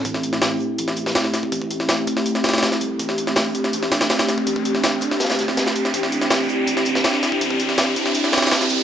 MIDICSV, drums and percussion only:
0, 0, Header, 1, 2, 480
1, 0, Start_track
1, 0, Key_signature, 0, "minor"
1, 0, Tempo, 368098
1, 65, Time_signature, 4, 2, 24, 8
1, 11518, End_track
2, 0, Start_track
2, 0, Title_t, "Drums"
2, 64, Note_on_c, 9, 42, 81
2, 65, Note_on_c, 9, 36, 104
2, 71, Note_off_c, 9, 42, 0
2, 71, Note_on_c, 9, 42, 87
2, 187, Note_on_c, 9, 38, 46
2, 195, Note_off_c, 9, 36, 0
2, 201, Note_off_c, 9, 42, 0
2, 304, Note_on_c, 9, 42, 64
2, 306, Note_off_c, 9, 42, 0
2, 306, Note_on_c, 9, 42, 70
2, 318, Note_off_c, 9, 38, 0
2, 426, Note_on_c, 9, 38, 51
2, 436, Note_off_c, 9, 42, 0
2, 542, Note_off_c, 9, 38, 0
2, 542, Note_on_c, 9, 38, 112
2, 542, Note_on_c, 9, 42, 83
2, 548, Note_on_c, 9, 46, 75
2, 551, Note_off_c, 9, 38, 0
2, 551, Note_on_c, 9, 38, 101
2, 673, Note_off_c, 9, 42, 0
2, 679, Note_off_c, 9, 46, 0
2, 681, Note_off_c, 9, 38, 0
2, 785, Note_on_c, 9, 42, 60
2, 915, Note_off_c, 9, 42, 0
2, 1023, Note_on_c, 9, 42, 82
2, 1027, Note_off_c, 9, 42, 0
2, 1027, Note_on_c, 9, 42, 83
2, 1144, Note_on_c, 9, 38, 48
2, 1157, Note_off_c, 9, 42, 0
2, 1257, Note_on_c, 9, 42, 62
2, 1264, Note_off_c, 9, 42, 0
2, 1264, Note_on_c, 9, 42, 66
2, 1275, Note_off_c, 9, 38, 0
2, 1387, Note_on_c, 9, 38, 43
2, 1393, Note_off_c, 9, 38, 0
2, 1393, Note_on_c, 9, 38, 57
2, 1395, Note_off_c, 9, 42, 0
2, 1503, Note_off_c, 9, 38, 0
2, 1503, Note_on_c, 9, 38, 108
2, 1503, Note_on_c, 9, 42, 80
2, 1505, Note_off_c, 9, 42, 0
2, 1505, Note_on_c, 9, 42, 83
2, 1509, Note_off_c, 9, 38, 0
2, 1509, Note_on_c, 9, 38, 106
2, 1623, Note_off_c, 9, 38, 0
2, 1623, Note_on_c, 9, 38, 49
2, 1636, Note_off_c, 9, 42, 0
2, 1740, Note_on_c, 9, 42, 68
2, 1743, Note_off_c, 9, 38, 0
2, 1743, Note_off_c, 9, 42, 0
2, 1743, Note_on_c, 9, 38, 52
2, 1743, Note_on_c, 9, 42, 68
2, 1866, Note_on_c, 9, 36, 89
2, 1873, Note_off_c, 9, 38, 0
2, 1873, Note_off_c, 9, 42, 0
2, 1983, Note_on_c, 9, 42, 84
2, 1984, Note_off_c, 9, 36, 0
2, 1984, Note_on_c, 9, 36, 105
2, 2106, Note_off_c, 9, 36, 0
2, 2106, Note_on_c, 9, 36, 92
2, 2113, Note_off_c, 9, 42, 0
2, 2221, Note_on_c, 9, 42, 60
2, 2223, Note_off_c, 9, 42, 0
2, 2223, Note_on_c, 9, 42, 65
2, 2237, Note_off_c, 9, 36, 0
2, 2346, Note_on_c, 9, 38, 43
2, 2354, Note_off_c, 9, 42, 0
2, 2459, Note_off_c, 9, 38, 0
2, 2459, Note_on_c, 9, 38, 102
2, 2462, Note_off_c, 9, 38, 0
2, 2462, Note_on_c, 9, 38, 110
2, 2462, Note_on_c, 9, 42, 83
2, 2475, Note_off_c, 9, 42, 0
2, 2475, Note_on_c, 9, 42, 91
2, 2588, Note_off_c, 9, 42, 0
2, 2588, Note_on_c, 9, 42, 39
2, 2592, Note_off_c, 9, 38, 0
2, 2699, Note_off_c, 9, 42, 0
2, 2699, Note_on_c, 9, 42, 67
2, 2703, Note_off_c, 9, 42, 0
2, 2703, Note_on_c, 9, 42, 66
2, 2704, Note_on_c, 9, 36, 93
2, 2825, Note_on_c, 9, 38, 50
2, 2834, Note_off_c, 9, 42, 0
2, 2835, Note_off_c, 9, 36, 0
2, 2944, Note_on_c, 9, 42, 83
2, 2946, Note_off_c, 9, 42, 0
2, 2946, Note_on_c, 9, 42, 79
2, 2955, Note_off_c, 9, 38, 0
2, 3065, Note_on_c, 9, 38, 48
2, 3076, Note_off_c, 9, 42, 0
2, 3179, Note_on_c, 9, 42, 60
2, 3182, Note_off_c, 9, 38, 0
2, 3182, Note_off_c, 9, 42, 0
2, 3182, Note_on_c, 9, 38, 86
2, 3182, Note_on_c, 9, 42, 66
2, 3187, Note_off_c, 9, 38, 0
2, 3187, Note_on_c, 9, 38, 50
2, 3244, Note_off_c, 9, 38, 0
2, 3244, Note_off_c, 9, 42, 0
2, 3244, Note_on_c, 9, 38, 86
2, 3244, Note_on_c, 9, 42, 64
2, 3306, Note_off_c, 9, 38, 0
2, 3306, Note_off_c, 9, 42, 0
2, 3306, Note_on_c, 9, 38, 85
2, 3306, Note_on_c, 9, 42, 65
2, 3365, Note_off_c, 9, 38, 0
2, 3365, Note_off_c, 9, 42, 0
2, 3365, Note_on_c, 9, 38, 86
2, 3365, Note_on_c, 9, 42, 65
2, 3425, Note_off_c, 9, 38, 0
2, 3425, Note_off_c, 9, 42, 0
2, 3425, Note_on_c, 9, 38, 106
2, 3425, Note_on_c, 9, 42, 83
2, 3427, Note_off_c, 9, 42, 0
2, 3427, Note_on_c, 9, 42, 84
2, 3430, Note_off_c, 9, 38, 0
2, 3430, Note_on_c, 9, 38, 115
2, 3538, Note_off_c, 9, 38, 0
2, 3538, Note_on_c, 9, 38, 53
2, 3548, Note_off_c, 9, 38, 0
2, 3548, Note_on_c, 9, 38, 53
2, 3558, Note_off_c, 9, 42, 0
2, 3666, Note_on_c, 9, 42, 68
2, 3670, Note_off_c, 9, 42, 0
2, 3670, Note_on_c, 9, 42, 66
2, 3678, Note_off_c, 9, 38, 0
2, 3801, Note_off_c, 9, 42, 0
2, 3906, Note_on_c, 9, 36, 107
2, 3906, Note_on_c, 9, 42, 83
2, 3908, Note_off_c, 9, 42, 0
2, 3908, Note_on_c, 9, 42, 84
2, 4028, Note_on_c, 9, 38, 48
2, 4036, Note_off_c, 9, 36, 0
2, 4038, Note_off_c, 9, 42, 0
2, 4146, Note_on_c, 9, 42, 68
2, 4158, Note_off_c, 9, 38, 0
2, 4267, Note_on_c, 9, 38, 51
2, 4277, Note_off_c, 9, 42, 0
2, 4380, Note_off_c, 9, 38, 0
2, 4380, Note_on_c, 9, 38, 105
2, 4385, Note_off_c, 9, 38, 0
2, 4385, Note_on_c, 9, 38, 109
2, 4385, Note_on_c, 9, 42, 88
2, 4391, Note_on_c, 9, 46, 83
2, 4515, Note_off_c, 9, 38, 0
2, 4515, Note_off_c, 9, 42, 0
2, 4522, Note_off_c, 9, 46, 0
2, 4626, Note_on_c, 9, 42, 77
2, 4633, Note_off_c, 9, 42, 0
2, 4633, Note_on_c, 9, 42, 62
2, 4749, Note_on_c, 9, 38, 45
2, 4764, Note_off_c, 9, 42, 0
2, 4865, Note_on_c, 9, 42, 85
2, 4871, Note_off_c, 9, 42, 0
2, 4871, Note_on_c, 9, 42, 76
2, 4879, Note_off_c, 9, 38, 0
2, 4988, Note_on_c, 9, 38, 51
2, 5002, Note_off_c, 9, 42, 0
2, 5103, Note_on_c, 9, 42, 69
2, 5106, Note_off_c, 9, 38, 0
2, 5106, Note_off_c, 9, 42, 0
2, 5106, Note_on_c, 9, 38, 100
2, 5106, Note_on_c, 9, 42, 74
2, 5225, Note_off_c, 9, 38, 0
2, 5225, Note_on_c, 9, 38, 56
2, 5227, Note_off_c, 9, 38, 0
2, 5227, Note_off_c, 9, 42, 0
2, 5227, Note_on_c, 9, 38, 105
2, 5227, Note_on_c, 9, 42, 77
2, 5338, Note_off_c, 9, 42, 0
2, 5338, Note_on_c, 9, 42, 77
2, 5346, Note_off_c, 9, 38, 0
2, 5346, Note_off_c, 9, 42, 0
2, 5346, Note_on_c, 9, 38, 96
2, 5346, Note_on_c, 9, 42, 76
2, 5354, Note_off_c, 9, 38, 0
2, 5354, Note_on_c, 9, 38, 104
2, 5467, Note_off_c, 9, 38, 0
2, 5467, Note_off_c, 9, 42, 0
2, 5467, Note_on_c, 9, 38, 101
2, 5467, Note_on_c, 9, 42, 77
2, 5587, Note_off_c, 9, 42, 0
2, 5587, Note_on_c, 9, 42, 69
2, 5588, Note_off_c, 9, 38, 0
2, 5588, Note_off_c, 9, 42, 0
2, 5588, Note_on_c, 9, 38, 53
2, 5588, Note_on_c, 9, 42, 68
2, 5709, Note_on_c, 9, 36, 90
2, 5718, Note_off_c, 9, 38, 0
2, 5718, Note_off_c, 9, 42, 0
2, 5827, Note_off_c, 9, 36, 0
2, 5827, Note_on_c, 9, 36, 107
2, 5828, Note_on_c, 9, 42, 85
2, 5830, Note_off_c, 9, 42, 0
2, 5830, Note_on_c, 9, 42, 82
2, 5949, Note_off_c, 9, 36, 0
2, 5949, Note_on_c, 9, 36, 94
2, 5961, Note_off_c, 9, 42, 0
2, 6067, Note_on_c, 9, 42, 72
2, 6068, Note_off_c, 9, 42, 0
2, 6068, Note_on_c, 9, 42, 67
2, 6079, Note_off_c, 9, 36, 0
2, 6190, Note_on_c, 9, 38, 43
2, 6198, Note_off_c, 9, 42, 0
2, 6306, Note_off_c, 9, 38, 0
2, 6306, Note_on_c, 9, 38, 111
2, 6307, Note_off_c, 9, 38, 0
2, 6307, Note_on_c, 9, 38, 115
2, 6307, Note_on_c, 9, 42, 87
2, 6309, Note_off_c, 9, 42, 0
2, 6309, Note_on_c, 9, 42, 91
2, 6420, Note_off_c, 9, 42, 0
2, 6420, Note_on_c, 9, 42, 39
2, 6437, Note_off_c, 9, 38, 0
2, 6534, Note_off_c, 9, 42, 0
2, 6534, Note_on_c, 9, 42, 68
2, 6546, Note_on_c, 9, 36, 93
2, 6547, Note_off_c, 9, 42, 0
2, 6547, Note_on_c, 9, 42, 66
2, 6669, Note_on_c, 9, 38, 51
2, 6677, Note_off_c, 9, 36, 0
2, 6678, Note_off_c, 9, 42, 0
2, 6781, Note_off_c, 9, 38, 0
2, 6781, Note_on_c, 9, 38, 88
2, 6787, Note_on_c, 9, 42, 86
2, 6787, Note_on_c, 9, 46, 56
2, 6842, Note_off_c, 9, 38, 0
2, 6842, Note_off_c, 9, 46, 0
2, 6842, Note_on_c, 9, 38, 90
2, 6842, Note_on_c, 9, 46, 63
2, 6907, Note_off_c, 9, 38, 0
2, 6907, Note_on_c, 9, 38, 47
2, 6915, Note_off_c, 9, 38, 0
2, 6915, Note_on_c, 9, 38, 110
2, 6916, Note_off_c, 9, 46, 0
2, 6916, Note_on_c, 9, 46, 68
2, 6917, Note_off_c, 9, 42, 0
2, 7026, Note_on_c, 9, 42, 67
2, 7031, Note_off_c, 9, 38, 0
2, 7031, Note_off_c, 9, 42, 0
2, 7031, Note_on_c, 9, 38, 45
2, 7031, Note_on_c, 9, 42, 59
2, 7047, Note_off_c, 9, 46, 0
2, 7147, Note_off_c, 9, 38, 0
2, 7147, Note_on_c, 9, 38, 47
2, 7161, Note_off_c, 9, 42, 0
2, 7266, Note_on_c, 9, 36, 96
2, 7267, Note_on_c, 9, 42, 75
2, 7269, Note_off_c, 9, 38, 0
2, 7269, Note_off_c, 9, 42, 0
2, 7269, Note_on_c, 9, 38, 108
2, 7269, Note_on_c, 9, 42, 84
2, 7383, Note_off_c, 9, 38, 0
2, 7383, Note_on_c, 9, 38, 55
2, 7389, Note_off_c, 9, 38, 0
2, 7389, Note_on_c, 9, 38, 41
2, 7397, Note_off_c, 9, 36, 0
2, 7399, Note_off_c, 9, 42, 0
2, 7506, Note_on_c, 9, 42, 61
2, 7508, Note_off_c, 9, 42, 0
2, 7508, Note_on_c, 9, 42, 72
2, 7519, Note_off_c, 9, 38, 0
2, 7628, Note_on_c, 9, 38, 46
2, 7638, Note_off_c, 9, 42, 0
2, 7744, Note_on_c, 9, 42, 90
2, 7745, Note_off_c, 9, 42, 0
2, 7745, Note_on_c, 9, 36, 108
2, 7745, Note_on_c, 9, 42, 87
2, 7759, Note_off_c, 9, 38, 0
2, 7866, Note_on_c, 9, 38, 47
2, 7875, Note_off_c, 9, 42, 0
2, 7876, Note_off_c, 9, 36, 0
2, 7981, Note_on_c, 9, 42, 68
2, 7984, Note_off_c, 9, 42, 0
2, 7984, Note_on_c, 9, 42, 68
2, 7996, Note_off_c, 9, 38, 0
2, 8105, Note_on_c, 9, 38, 52
2, 8115, Note_off_c, 9, 42, 0
2, 8221, Note_off_c, 9, 38, 0
2, 8221, Note_on_c, 9, 38, 120
2, 8223, Note_off_c, 9, 38, 0
2, 8223, Note_on_c, 9, 38, 113
2, 8223, Note_on_c, 9, 42, 86
2, 8231, Note_on_c, 9, 46, 83
2, 8354, Note_off_c, 9, 38, 0
2, 8354, Note_off_c, 9, 42, 0
2, 8361, Note_off_c, 9, 46, 0
2, 8464, Note_on_c, 9, 42, 61
2, 8595, Note_off_c, 9, 42, 0
2, 8699, Note_on_c, 9, 42, 86
2, 8704, Note_off_c, 9, 42, 0
2, 8704, Note_on_c, 9, 42, 85
2, 8827, Note_on_c, 9, 38, 52
2, 8835, Note_off_c, 9, 42, 0
2, 8935, Note_on_c, 9, 42, 66
2, 8946, Note_off_c, 9, 42, 0
2, 8946, Note_on_c, 9, 42, 67
2, 8957, Note_off_c, 9, 38, 0
2, 9067, Note_on_c, 9, 38, 45
2, 9069, Note_off_c, 9, 38, 0
2, 9069, Note_on_c, 9, 38, 59
2, 9076, Note_off_c, 9, 42, 0
2, 9182, Note_off_c, 9, 38, 0
2, 9182, Note_on_c, 9, 38, 110
2, 9186, Note_off_c, 9, 38, 0
2, 9186, Note_on_c, 9, 38, 109
2, 9186, Note_on_c, 9, 42, 82
2, 9187, Note_off_c, 9, 42, 0
2, 9187, Note_on_c, 9, 42, 91
2, 9308, Note_off_c, 9, 38, 0
2, 9308, Note_on_c, 9, 38, 49
2, 9317, Note_off_c, 9, 42, 0
2, 9425, Note_off_c, 9, 38, 0
2, 9425, Note_on_c, 9, 38, 55
2, 9425, Note_on_c, 9, 42, 69
2, 9426, Note_off_c, 9, 42, 0
2, 9426, Note_on_c, 9, 42, 70
2, 9547, Note_on_c, 9, 36, 94
2, 9555, Note_off_c, 9, 38, 0
2, 9556, Note_off_c, 9, 42, 0
2, 9665, Note_off_c, 9, 36, 0
2, 9665, Note_on_c, 9, 36, 108
2, 9665, Note_on_c, 9, 42, 87
2, 9670, Note_off_c, 9, 42, 0
2, 9670, Note_on_c, 9, 42, 79
2, 9787, Note_off_c, 9, 36, 0
2, 9787, Note_on_c, 9, 36, 95
2, 9800, Note_off_c, 9, 42, 0
2, 9902, Note_on_c, 9, 42, 62
2, 9905, Note_off_c, 9, 42, 0
2, 9905, Note_on_c, 9, 42, 68
2, 9917, Note_off_c, 9, 36, 0
2, 10026, Note_on_c, 9, 38, 44
2, 10036, Note_off_c, 9, 42, 0
2, 10142, Note_off_c, 9, 38, 0
2, 10142, Note_on_c, 9, 38, 124
2, 10145, Note_off_c, 9, 38, 0
2, 10145, Note_on_c, 9, 38, 113
2, 10145, Note_on_c, 9, 42, 89
2, 10152, Note_off_c, 9, 42, 0
2, 10152, Note_on_c, 9, 42, 87
2, 10267, Note_off_c, 9, 42, 0
2, 10267, Note_on_c, 9, 42, 46
2, 10275, Note_off_c, 9, 38, 0
2, 10385, Note_off_c, 9, 42, 0
2, 10385, Note_on_c, 9, 36, 95
2, 10385, Note_on_c, 9, 42, 67
2, 10507, Note_on_c, 9, 38, 52
2, 10515, Note_off_c, 9, 36, 0
2, 10516, Note_off_c, 9, 42, 0
2, 10625, Note_on_c, 9, 42, 84
2, 10627, Note_off_c, 9, 42, 0
2, 10627, Note_on_c, 9, 42, 79
2, 10638, Note_off_c, 9, 38, 0
2, 10747, Note_on_c, 9, 38, 49
2, 10758, Note_off_c, 9, 42, 0
2, 10852, Note_off_c, 9, 38, 0
2, 10852, Note_on_c, 9, 38, 49
2, 10857, Note_on_c, 9, 42, 61
2, 10864, Note_off_c, 9, 38, 0
2, 10864, Note_off_c, 9, 42, 0
2, 10864, Note_on_c, 9, 38, 86
2, 10864, Note_on_c, 9, 42, 68
2, 10924, Note_off_c, 9, 38, 0
2, 10924, Note_off_c, 9, 42, 0
2, 10924, Note_on_c, 9, 38, 89
2, 10924, Note_on_c, 9, 42, 68
2, 10985, Note_off_c, 9, 38, 0
2, 10985, Note_off_c, 9, 42, 0
2, 10985, Note_on_c, 9, 38, 89
2, 10985, Note_on_c, 9, 42, 68
2, 11044, Note_off_c, 9, 38, 0
2, 11044, Note_off_c, 9, 42, 0
2, 11044, Note_on_c, 9, 38, 92
2, 11044, Note_on_c, 9, 42, 67
2, 11103, Note_off_c, 9, 38, 0
2, 11103, Note_on_c, 9, 38, 108
2, 11104, Note_off_c, 9, 38, 0
2, 11104, Note_off_c, 9, 42, 0
2, 11104, Note_on_c, 9, 38, 114
2, 11104, Note_on_c, 9, 42, 86
2, 11227, Note_off_c, 9, 38, 0
2, 11227, Note_on_c, 9, 38, 54
2, 11228, Note_off_c, 9, 38, 0
2, 11228, Note_on_c, 9, 38, 51
2, 11234, Note_off_c, 9, 42, 0
2, 11345, Note_on_c, 9, 42, 68
2, 11349, Note_off_c, 9, 42, 0
2, 11349, Note_on_c, 9, 42, 64
2, 11359, Note_off_c, 9, 38, 0
2, 11480, Note_off_c, 9, 42, 0
2, 11518, End_track
0, 0, End_of_file